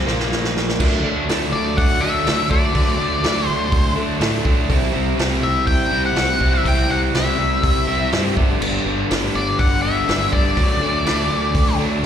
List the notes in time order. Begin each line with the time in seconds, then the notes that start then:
0.05 A#1 A#2 F3 A#3, snare
0.20 snare
0.32 snare
0.44 snare
0.57 snare
0.69 snare
0.80 D2 D3 F#3 A3 D4, kick, crash
1.03 D2 F#3 A3 D4
1.28 D2 D3 F#3 A3 D4, snare, open hi-hat
1.53 D2 D5
1.77 D2 F#5, kick, open hi-hat
2.01 D2 F#3 A3 D4 E5
2.25 D2 D3 F#3 A3 D4, snare, open hi-hat
2.49 D2 F#3 A3 D4 D5, kick
2.73 D2 D3 F#3 A3 D4, kick, open hi-hat
2.97 D2 F#3 A3 D4
3.23 D2 D3 F#3 A3 D4, snare, open hi-hat
3.46 D2 C5
3.72 D2, kick, open hi-hat
3.96 D2 F#3 A3 D4
4.20 A2 D3 F#3 A3 D4, snare, open hi-hat
4.44 D2 F#3 A3 D4, kick
4.69 C2 C3 G3 C4 E4, kick, open hi-hat
4.93 C2 G3 C4 E4
5.18 C2 C3 G3 C4 E4, snare, open hi-hat
5.43 C2 E5
5.67 C2 G5, kick, open hi-hat
5.91 C2 G3 C4 E4
6.06 F#5
6.15 C2 C3 G3 C4 E4, snare, open hi-hat
6.40 C2 G3 C4 E4, kick
6.54 E5
6.64 C2 C3 G3 C4 E4 G5, kick, open hi-hat
6.89 C2 G3 C4 E4 F#5
7.14 C2 C3 G3 C4 E4 E5, snare, open hi-hat
7.39 C2
7.64 C2, kick, open hi-hat
7.88 C2 G3 C4 E4
8.12 G2 C3 G3 C4 E4, snare, open hi-hat
8.37 G1 G2 D3 G3 B3 D4, kick
8.61 G1 G2 D3 G3 B3 D4, crash
8.84 G1 G3 B3 D4
9.10 G1 D3 G3 B3 D4, snare, open hi-hat
9.34 G1 D5
9.59 G1 F#5, kick, open hi-hat
9.82 G1 G3 B3 D4 E5
10.08 G1 G2 D3 G3 B3 D4, snare, open hi-hat
10.32 G1 G3 B3 D4 D5, kick
10.57 D2 D3 F#3 A3 D4, kick, open hi-hat
10.81 D2 F#3 A3 D4
11.06 D2 D3 F#3 A3 D4, snare, open hi-hat
11.31 D2
11.55 D2, kick, open hi-hat
11.78 D2 F#3 A3 D4
12.03 A2